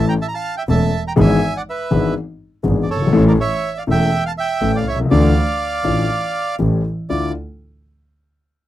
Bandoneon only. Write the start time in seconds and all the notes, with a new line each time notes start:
0.08 G5 A#5
0.22 E5 A5
0.28 A#5
0.34 F5 A5
0.57 E5 G5
0.69 E5 A5
1.07 G5 A#5
1.20 E5 G#5
1.57 D5 F#5
1.70 B4 E5
2.83 D5
2.91 A4 C#5
3.28 A#4 D5
3.40 C#5 E5
3.78 D5 F5
3.91 E5 G5
4.26 F5 A5
4.38 E5 G5
4.76 D5 F5
4.88 C#5 E5
5.11 D5 F5
7.10 D5